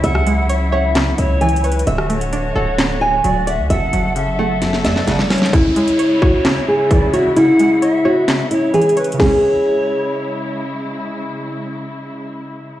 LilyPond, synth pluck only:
\new Staff \with { instrumentName = "Synth pluck" } { \clef bass \time 4/4 \key cis \phrygian \tempo 4 = 131 <cis e cis''>8 gis8 cis''8 cis''8 cis4 e8 cis''8 | d8 a8 d'8 a'8 d4 fis8 d''8 | fis,8 fis8 cis8 a8 fis,4 cis8 cis'8 | cis8 gis8 cis''8 cis''8 cis4 e8 cis''8 |
cis8 gis8 cis''8 cis''8 cis4 e8 cis''8 | <cis e gis cis'>1~ | <cis e gis cis'>1 | }